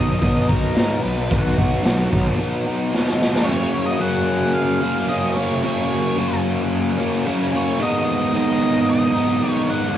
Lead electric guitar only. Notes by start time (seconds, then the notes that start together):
Already playing: D#5
0.19 D#5
0.48 A#4
1.03 B4
1.30 F#4
3.44 C#5
3.86 D#5
4.01 F#5
4.39 F#5
4.53 F5
5.09 D#5
5.35 C#5
7.56 C#5
7.82 D#5
8.37 D#5
8.90 D#5
9.50 C#5
9.70 F#5